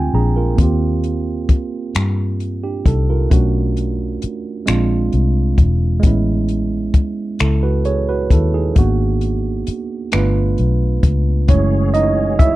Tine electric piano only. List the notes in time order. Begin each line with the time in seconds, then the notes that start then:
Already playing: G#3 C4 F4 G5 G#5
0.15 D4 G#4 A#5
0.36 F4 A#4
0.56 A#3 C4
0.61 F4 G4
2.64 D4 G4
2.87 D#4 A4
3.10 F4 A#4
3.30 A3 C#4 D4 F#4
4.66 G#3 C4 D4 F4
6.00 G#3 B3
6.05 C#4 E4
7.41 E4 A4
7.63 F#4 B4
7.85 G#4 C#5
8.09 F#4 B4
8.32 E4 A4
8.54 D#4 G#4
8.75 A#3 B3 D4 F#4
10.12 A3 B3 D4 F4 B4
11.49 G#3 A3 C#4 E4 C#5
11.94 D#4 D#5
12.39 E4 E5